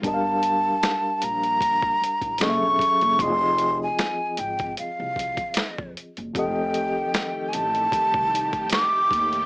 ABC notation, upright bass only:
X:1
M:4/4
L:1/16
Q:"Swing 16ths" 1/4=76
K:Fmix
V:1 name="Upright bass" clef=bass
G,,,4 z2 B,,,4 z A,,, _G,,, _F,,, z G,,, | F,,,4 z2 _A,,,2 z C,,2 z2 F,, z _G,,, | F,,,4 z2 A,,,2 z C,,2 z3 E,,2 |]